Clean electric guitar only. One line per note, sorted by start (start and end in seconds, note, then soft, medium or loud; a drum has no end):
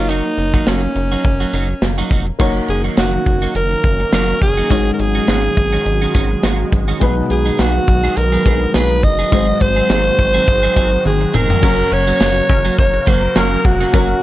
0.09 0.29 F#3 medium
0.09 0.25 A#3 medium
0.09 0.24 D#4 medium
0.09 0.24 F#4 medium
0.25 muted clean electric guitar stroke soft
0.38 muted clean electric guitar stroke soft
0.54 0.66 F#3 soft
0.54 0.66 A#3 medium
0.54 0.67 D#4 medium
0.54 0.67 F#4 medium
0.67 0.87 F#3 medium
0.67 0.83 A#3 medium
0.67 0.82 D#4 medium
0.67 0.82 F#4 medium
0.83 muted clean electric guitar stroke soft
0.96 muted clean electric guitar stroke soft
1.12 1.23 F#3 soft
1.12 1.24 A#3 soft
1.12 1.24 D#4 medium
1.12 1.24 F#4 medium
1.25 muted clean electric guitar stroke soft
1.40 1.52 F#3 soft
1.40 1.53 A#3 soft
1.40 1.53 D#4 soft
1.40 1.54 F#4 medium
1.53 1.73 F#3 medium
1.53 1.69 A#3 medium
1.53 1.69 D#4 medium
1.53 1.68 F#4 medium
1.69 muted clean electric guitar stroke soft
1.82 muted clean electric guitar stroke soft
1.98 2.10 F#3 medium
1.98 2.10 A#3 medium
1.98 2.11 D#4 medium
1.98 2.11 F#4 medium
2.11 2.27 F#3 medium
2.11 2.27 A#3 medium
2.11 2.26 D#4 medium
2.11 2.26 F#4 medium
2.27 muted clean electric guitar stroke soft
2.40 2.60 F#3 medium
2.40 2.55 A#3 medium
2.40 2.55 D#4 medium
2.40 2.54 F#4 medium
2.55 muted clean electric guitar stroke soft
2.69 muted clean electric guitar stroke soft
2.84 2.96 F#3 soft
2.84 2.96 A#3 medium
2.84 2.97 D#4 medium
2.84 2.97 F#4 medium
2.97 3.17 F#3 medium
2.97 3.13 A#3 medium
2.97 3.13 D#4 medium
2.97 3.12 F#4 medium
3.13 muted clean electric guitar stroke soft
3.26 muted clean electric guitar stroke soft
3.42 3.54 F#3 soft
3.42 3.54 A#3 medium
3.42 3.54 D#4 medium
3.42 3.55 F#4 medium
3.55 muted clean electric guitar stroke soft
3.71 muted clean electric guitar stroke soft
4.00 muted clean electric guitar stroke soft
4.13 4.33 F#3 medium
4.13 4.29 A#3 medium
4.13 4.28 D#4 medium
4.13 4.28 F#4 loud
4.29 muted clean electric guitar stroke soft
4.42 muted clean electric guitar stroke soft
4.57 4.70 F#3 soft
4.57 4.70 A#3 medium
4.57 4.71 D#4 medium
4.57 4.70 F#4 medium
4.70 4.90 D#3 medium
4.70 4.86 G#3 medium
4.70 4.86 C#4 medium
4.70 4.85 F#4 medium
4.86 muted clean electric guitar stroke soft
4.99 muted clean electric guitar stroke soft
5.15 5.27 D#3 soft
5.15 5.27 G#3 medium
5.15 5.28 C#4 medium
5.15 5.28 F#4 medium
5.28 5.48 D#3 medium
5.28 5.44 G#3 medium
5.28 5.43 C#4 medium
5.28 5.43 F#4 medium
5.44 muted clean electric guitar stroke soft
5.57 muted clean electric guitar stroke soft
5.73 5.85 D#3 medium
5.73 5.85 G#3 medium
5.73 5.85 C#4 medium
5.73 5.86 F#4 medium
5.86 muted clean electric guitar stroke soft
6.02 6.13 D#3 soft
6.02 6.14 G#3 soft
6.02 6.14 C#4 medium
6.02 6.15 F#4 medium
6.15 6.35 D#3 medium
6.15 6.30 G#3 medium
6.15 6.30 C#4 medium
6.15 6.29 F#4 medium
6.31 muted clean electric guitar stroke medium
6.43 6.63 D#3 medium
6.43 6.59 G#3 medium
6.43 6.59 C#4 medium
6.43 6.58 F#4 medium
6.59 muted clean electric guitar stroke soft
6.72 muted clean electric guitar stroke soft
6.88 7.00 D#3 medium
6.88 7.01 G#3 medium
6.88 7.01 C#4 medium
6.88 7.02 F#4 medium
7.01 7.21 F#3 medium
7.01 7.16 B3 medium
7.01 7.16 D#4 medium
7.01 7.16 G#4 medium
7.17 muted clean electric guitar stroke soft
7.30 muted clean electric guitar stroke soft
7.46 7.57 F#3 medium
7.46 7.58 B3 medium
7.46 7.58 D#4 medium
7.46 7.59 G#4 medium
7.59 7.79 F#3 medium
7.59 7.75 B3 medium
7.59 7.74 D#4 medium
7.59 7.73 G#4 medium
7.75 muted clean electric guitar stroke soft
7.88 muted clean electric guitar stroke soft
8.04 8.15 F#3 medium
8.04 8.16 B3 medium
8.04 8.16 D#4 medium
8.04 8.16 G#4 medium
8.16 muted clean electric guitar stroke soft
8.32 8.44 F#3 soft
8.32 8.45 B3 medium
8.32 8.45 D#4 medium
8.32 8.45 G#4 medium
8.45 8.65 F#3 medium
8.45 8.61 B3 medium
8.45 8.60 D#4 loud
8.45 8.60 G#4 loud
8.61 muted clean electric guitar stroke soft
8.74 8.94 F#3 medium
8.74 8.90 B3 medium
8.74 8.90 D#4 medium
8.74 8.89 G#4 medium
8.90 muted clean electric guitar stroke medium
9.03 muted clean electric guitar stroke soft
9.19 9.30 F#3 soft
9.19 9.32 B3 soft
9.19 9.31 D#4 medium
9.19 9.32 G#4 medium
9.32 9.52 F#3 medium
9.32 9.47 C4 medium
9.32 9.47 D#4 medium
9.32 9.46 G#4 medium
9.48 muted clean electric guitar stroke medium
9.60 muted clean electric guitar stroke soft
9.76 9.88 F#3 soft
9.76 9.88 C4 medium
9.76 9.89 D#4 medium
9.76 9.89 G#4 medium
9.89 10.09 F#3 medium
9.89 10.05 C4 medium
9.89 10.05 D#4 medium
9.89 10.04 G#4 medium
10.05 muted clean electric guitar stroke medium
10.18 muted clean electric guitar stroke soft
10.34 10.46 F#3 soft
10.34 10.46 C4 soft
10.34 10.47 D#4 medium
10.34 10.47 G#4 medium
10.47 muted clean electric guitar stroke soft
10.63 10.75 F#3 soft
10.63 10.75 C4 soft
10.63 10.76 D#4 medium
10.63 10.76 G#4 medium
10.76 10.96 F#3 medium
10.76 10.92 C4 medium
10.76 10.91 D#4 medium
10.76 10.91 G#4 medium
10.92 muted clean electric guitar stroke soft
11.05 muted clean electric guitar stroke soft
11.21 muted clean electric guitar stroke soft
11.34 11.50 F#3 medium
11.34 11.49 C4 medium
11.34 11.49 D#4 medium
11.34 11.48 G#4 medium
11.49 11.61 F#3 soft
11.49 11.63 C4 medium
11.49 11.63 D#4 medium
11.49 11.63 G#4 medium
11.63 11.83 F#3 medium
11.63 11.78 A#3 medium
11.63 11.78 C#4 loud
11.63 11.77 F#4 medium
11.79 muted clean electric guitar stroke soft
11.92 muted clean electric guitar stroke soft
12.07 12.19 F#3 medium
12.07 12.20 A#3 medium
12.07 12.20 C#4 medium
12.07 12.21 F#4 medium
12.20 12.40 F#3 medium
12.20 12.36 A#3 medium
12.20 12.36 C#4 medium
12.20 12.35 F#4 medium
12.36 muted clean electric guitar stroke soft
12.49 muted clean electric guitar stroke soft
12.65 12.77 F#3 medium
12.65 12.77 A#3 medium
12.65 12.78 C#4 medium
12.65 12.78 F#4 medium
12.78 muted clean electric guitar stroke soft
12.94 muted clean electric guitar stroke medium
13.07 13.27 F#3 medium
13.07 13.23 A#3 medium
13.07 13.22 C#4 medium
13.07 13.22 F#4 medium
13.23 muted clean electric guitar stroke soft
13.36 13.56 F#3 medium
13.36 13.52 A#3 medium
13.36 13.51 C#4 medium
13.36 13.51 F#4 loud
13.52 muted clean electric guitar stroke soft
13.65 muted clean electric guitar stroke soft
13.81 13.92 F#3 medium
13.81 13.93 A#3 medium
13.81 13.94 C#4 medium
13.81 13.94 F#4 medium
13.94 14.14 F#3 medium
13.94 14.09 A#3 medium
13.94 14.09 C#4 medium
13.94 14.08 F#4 medium
14.10 muted clean electric guitar stroke soft